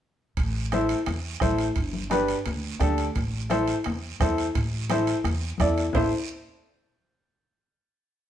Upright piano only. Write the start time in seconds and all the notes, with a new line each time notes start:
0.72 E4 A4 C5
1.41 E4 A4 C5
2.10 D4 G4 B4
2.80 D4 G4 A4
3.50 E4 A4 C5
4.21 E4 A4 C5
4.90 E4 A4 C5
5.60 E4 A4 D5
5.94 E4 A4 C5